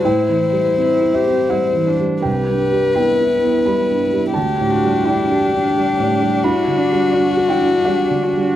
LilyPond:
<<
  \new Staff \with { instrumentName = "Violin" } { \time 3/4 \key g \major \tempo 4 = 85 c''2~ c''8 r8 | b'2. | g'2. | fis'2. | }
  \new Staff \with { instrumentName = "Cello" } { \time 3/4 \key g \major e'2~ e'8 r8 | g'4 e'4 e'4 | g'8 fis'8 e'8 d'4. | e'8 d'8 fis'8 e'8 d'8 fis'8 | }
  \new Staff \with { instrumentName = "Viola" } { \time 3/4 \key g \major e'4 e'8 g'8 e'8 d'8 | r2. | d'2.~ | d'2. | }
  \new Staff \with { instrumentName = "Felt piano" } { \time 3/4 \key g \major g''4. e''8 fis''4 | g''4 g''4 b''4 | a''4 g''8 r4. | b''4. g''8 fis''4 | }
  \new Staff \with { instrumentName = "Felt piano" } { \clef bass \time 3/4 \key g \major \tuplet 3/2 { a,8 e8 g8 c'8 e'8 c'8 g8 e8 g8 } | \tuplet 3/2 { c,8 g,8 g8 b8 e'8 b8 g8 g,8 g8 } | \tuplet 3/2 { d,8 a,8 g8 d'8 g'8 d'8 g8 a,8 g8 } | \tuplet 3/2 { g,8 d8 g8 d'8 fis'8 d'8 g8 d8 g8 } | }
>>